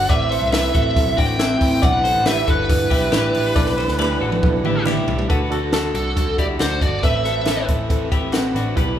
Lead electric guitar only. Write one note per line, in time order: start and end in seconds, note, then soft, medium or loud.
0.00 0.11 F#5 loud
0.10 0.52 E5 loud
0.53 1.20 E5 loud
1.19 1.79 G5 loud
1.84 2.24 F#5 loud
2.27 2.49 E5 loud
2.50 4.83 B4 medium
5.95 6.35 A4 medium
6.39 6.45 D5 medium
6.61 6.83 C5 loud
6.82 7.04 D5 medium
7.04 7.65 E5 loud